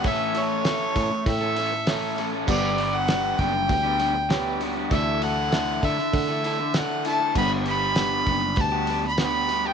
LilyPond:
<<
  \new Staff \with { instrumentName = "Fiddle" } { \time 4/4 \key g \lydian \tempo 4 = 98 e''8 cis''4. e''4. r8 | d''8. fis''8. g''2 r8 | e''8 fis''4 e''4. fis''8 a''8 | b''8 b''4. a''8. b''16 b''8. g''16 | }
  \new Staff \with { instrumentName = "Upright piano" } { \time 4/4 \key g \lydian <a' cis'' e''>4 <a' cis'' e''>4 <a' cis'' g''>4 <a' cis'' e''>4 | <g' b' fis''>4 <g' b' d''>4 <g' b' g''>4 <g' b' cis''>4 | <a' d'' e''>4 <a' d'' e''>4 <a' d'' fis''>4 <a' d'' e''>4 | <g' b' fis''>4 <g' b' fis''>4 <g' b' fis''>4 <g' b' fis''>4 | }
  \new Staff \with { instrumentName = "Steel-string acoustic guitar" } { \time 4/4 \key g \lydian <a, e a cis' a'>4 <e a cis' a'>8 <a cis' a'>8 <e a cis' a'>8 <a cis' a'>4 <a cis' a'>8 | <g b d'>4 <g b d'>8 <b d'>8 <g b d'>8 <b d'>4 <b d' fis'>8 | <d e a d' e'>4 <e a d' e'>8 <a d' e'>8 <e a d' e'>8 <a d' e'>4 <a d' e'>8 | <g b d'>4 <g b d'>8 <b d'>8 <g b d' fis'>8 <b d'>4 <b d' fis'>8 | }
  \new Staff \with { instrumentName = "Overdriven electric guitar" } { \time 4/4 \key g \lydian <a, e a cis' a'>8 <e a cis' a'>8 <a, e a cis' a'>8 <e a cis' a'>8. <a cis' a'>16 <e a cis' a'>8 <a, e a cis' a'>8 <e a cis' a'>16 <a cis' a'>16 | <g, d g b d' g'>8 <g b d' g'>8 <g, d g b d' g'>8 <g b d' g'>8. <g b d' g'>16 <g b d' g'>8 <g, d g b d' g'>8 <g b d' g'>16 <g b d' g'>16 | <d a e' a'>8 <d a e' a'>8 <d a e' a'>8 <d a e' a'>8. <a e' a'>16 <d a e' a'>8 <d a e' a'>8 <d a e' a'>16 <a e' a'>16 | <g, d g b d' g'>8 <g b d' g'>8 <g, d g b d' g'>8 <g b d' g'>8. <g b d' g'>16 <g b d' g'>8 <g, d g b d' g'>8 <g b d' g'>16 <g b d' g'>16 | }
  \new Staff \with { instrumentName = "Fingered electric bass" } { \clef bass \time 4/4 \key g \lydian a,,4. a,16 r16 a,2 | g,,4. fis,,8 d,2 | d,4. d16 r16 d2 | g,,4. fis,,8 d,2 | }
  \new DrumStaff \with { instrumentName = "Drums" } \drummode { \time 4/4 <hho bd>8 hho8 <hho sn>8 <hho bd>8 <hho bd>8 hho8 <hho sn>8 hho8 | <cymc bd>8 hho8 <hho sn>8 <hho bd>8 <hho bd>8 hho8 <hho sn>8 hho8 | <hho bd>8 hho8 <hho sn>8 <hho bd>16 sn16 <hho bd>8 hho8 <hho sn>8 hho8 | <cymc bd>8 hho8 <hho sn>8 <hho bd>8 <hho bd>8 hho8 <hho sn>8 hho8 | }
>>